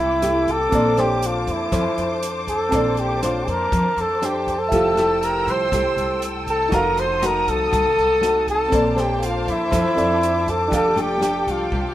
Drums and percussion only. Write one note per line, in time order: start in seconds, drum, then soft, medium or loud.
0.22 cross-stick medium
0.22 closed hi-hat soft
0.47 kick soft
0.47 closed hi-hat soft
0.72 kick medium
0.72 closed hi-hat soft
0.97 cross-stick medium
0.97 closed hi-hat soft
1.22 closed hi-hat soft
1.47 kick soft
1.47 closed hi-hat soft
1.72 kick medium
1.72 cross-stick medium
1.72 closed hi-hat soft
1.98 closed hi-hat soft
2.23 closed hi-hat soft
2.47 kick soft
2.47 closed hi-hat soft
2.72 kick medium
2.72 cross-stick medium
2.72 closed hi-hat soft
2.97 closed hi-hat soft
3.23 cross-stick medium
3.23 closed hi-hat soft
3.47 kick soft
3.47 closed hi-hat soft
3.72 kick medium
3.72 closed hi-hat soft
3.98 closed hi-hat soft
4.22 cross-stick medium
4.22 closed hi-hat soft
4.47 kick soft
4.47 closed hi-hat soft
4.72 kick medium
4.72 closed hi-hat soft
4.97 cross-stick medium
4.97 closed hi-hat soft
5.23 closed hi-hat soft
5.47 kick soft
5.47 closed hi-hat soft
5.72 kick medium
5.72 cross-stick medium
5.72 closed hi-hat soft
5.98 closed hi-hat soft
6.22 closed hi-hat soft
6.47 kick soft
6.47 closed hi-hat soft
6.72 kick medium
6.72 cross-stick medium
6.72 closed hi-hat soft
6.97 closed hi-hat soft
7.22 cross-stick medium
7.22 closed hi-hat soft
7.47 kick soft
7.47 closed hi-hat soft
7.73 kick medium
7.73 closed hi-hat soft
7.98 closed hi-hat soft
8.23 cross-stick medium
8.23 closed hi-hat soft
8.47 kick soft
8.47 closed hi-hat soft
8.72 kick medium
8.72 closed hi-hat soft
8.98 cross-stick medium
8.98 closed hi-hat soft
9.23 closed hi-hat soft
9.47 kick soft
9.47 closed hi-hat soft
9.72 kick medium
9.72 cross-stick medium
9.72 closed hi-hat soft
9.98 closed hi-hat soft
10.23 closed hi-hat soft
10.47 kick soft
10.47 closed hi-hat soft
10.72 kick medium
10.72 cross-stick medium
10.72 closed hi-hat soft
10.97 closed hi-hat soft
11.22 cross-stick medium
11.22 closed hi-hat soft
11.47 kick soft
11.47 closed hi-hat soft
11.72 kick soft